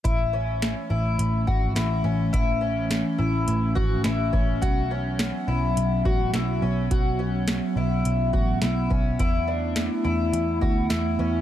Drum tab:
HH |x-x-x-x-|x-x-x-x-|x-x-x-x-|x-x-x-x-|
SD |--o---o-|--o---o-|--o---o-|--o---o-|
BD |o----o--|o----o-o|o----o--|o----o-o|

HH |x-x-x-x-|
SD |--o---o-|
BD |o----o--|